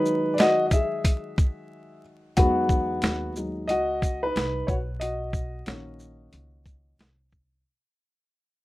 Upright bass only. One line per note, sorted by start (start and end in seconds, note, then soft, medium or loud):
2.38 3.00 E2 loud
3.03 3.70 D#2 loud
3.70 4.32 C#2 loud
4.36 4.67 C2 medium
4.68 5.63 B1 medium
5.67 6.30 A#1 medium
6.34 6.96 C#2 medium
6.99 7.62 C2 medium